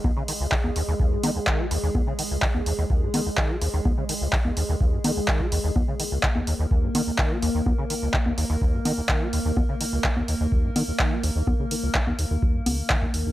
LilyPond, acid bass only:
\new Staff \with { instrumentName = "Acid bass" } { \clef bass \time 4/4 \key c \phrygian \tempo 4 = 126 ees,16 des16 ees16 des,16 ees16 ees,16 ees,16 ees,16 ees,16 aes,16 ees16 ees,16 ees16 ges16 ees,16 ees,16 | ees,16 des16 ees16 des,16 ees16 ees,16 ees,16 ees,16 ees,16 aes,16 ees16 ees,16 ees16 ges16 ees,16 ees,16 | ees,16 des16 ees16 des,16 ees16 ees,16 ees,16 ees,16 ees,16 aes,16 ees16 ees,16 ees16 ges16 ees,16 ees,16 | ees,16 des16 ees16 des,16 ees16 ees,16 ees,16 ees,16 ees,16 aes,16 ees16 ees,16 ees16 ges16 ees,16 ees,16 |
ees,16 des16 ees16 des,16 ees16 ees,16 ees,16 ees,16 ees,16 aes,16 ees16 ees,16 ees16 ges16 ees,16 ees,16 | ees,16 des16 ees16 des,16 ees16 ees,16 ees,16 ees,16 ees,16 aes,16 ees16 ees,16 ees16 ges16 ees,16 ees,16 | ees,16 des16 ees16 des,16 ees16 ees,16 ees,16 ees,16 ees,16 aes,16 des,16 ees,16 ees16 ees,16 ees,16 ees,16 | }